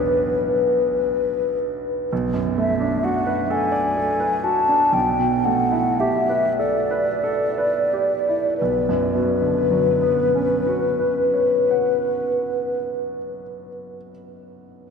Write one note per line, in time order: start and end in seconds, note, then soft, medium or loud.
0.00 2.05 B1 soft
0.00 2.06 B3 soft
0.00 2.06 D4 soft
0.00 2.07 G#4 soft
0.00 1.59 B4 soft
0.00 2.07 B4 soft
2.13 4.91 B1 soft
2.34 2.71 F#2 soft
2.58 2.95 A3 soft
2.58 3.06 E5 soft
2.80 3.18 D4 soft
3.03 3.41 F#4 soft
3.03 3.53 F#5 soft
3.27 3.64 B4 soft
3.50 3.88 A4 soft
3.50 4.45 G#5 soft
3.72 4.10 D5 soft
3.97 4.35 A4 soft
4.20 4.59 B4 soft
4.44 4.84 F#4 soft
4.44 4.95 A5 soft
4.69 4.94 D4 soft
4.93 8.55 B1 soft
4.93 5.46 G5 soft
5.19 5.61 B2 soft
5.45 5.89 A3 soft
5.45 6.02 F#5 soft
5.72 6.18 E4 soft
6.00 6.47 G4 soft
6.00 6.58 E5 soft
6.29 6.78 B4 soft
6.58 7.10 A4 soft
6.58 8.55 D5 soft
6.91 7.43 B4 soft
7.24 7.77 A4 soft
7.58 8.13 B4 soft
7.93 8.47 G4 soft
8.29 8.61 E4 soft
8.57 12.84 B4 soft
8.62 12.88 B1 soft
8.89 13.16 F#2 soft
9.14 13.41 B2 soft
9.42 13.69 D3 soft
9.71 13.97 F#3 soft
10.02 14.11 B3 soft
10.35 14.12 C#4 soft
10.67 14.11 F#4 soft
10.99 14.11 B4 soft
11.34 14.10 C#5 soft
11.71 14.11 F#5 soft